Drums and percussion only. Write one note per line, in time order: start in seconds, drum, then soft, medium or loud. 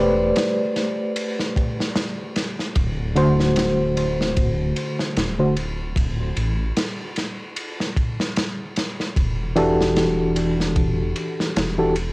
0.36 snare loud
0.36 ride medium
0.76 snare soft
0.76 ride medium
1.16 ride medium
1.39 snare soft
1.56 kick medium
1.56 ride medium
1.80 snare soft
1.96 snare loud
1.96 ride medium
2.36 snare medium
2.36 ride medium
2.59 snare soft
2.76 kick loud
2.76 ride medium
3.16 ride medium
3.40 snare soft
3.56 snare loud
3.56 ride medium
3.97 ride medium
4.21 snare soft
4.37 kick loud
4.37 ride medium
4.76 ride medium
4.99 snare soft
5.16 snare medium
5.16 ride medium
5.57 ride medium
5.96 kick loud
5.96 ride medium
6.37 ride medium
6.77 snare loud
6.77 ride medium
7.16 snare soft
7.16 ride medium
7.56 ride medium
7.80 snare soft
7.97 kick medium
7.97 ride medium
8.20 snare medium
8.36 snare loud
8.36 ride medium
8.76 snare medium
8.76 ride medium
9.00 snare soft
9.16 kick loud
9.16 ride medium
9.56 ride medium
9.81 snare medium
9.96 snare loud
9.96 ride medium
10.36 ride medium
10.60 snare soft
10.76 kick loud
10.76 ride medium
11.16 ride medium
11.40 snare soft
11.56 snare loud
11.56 ride medium
11.96 ride medium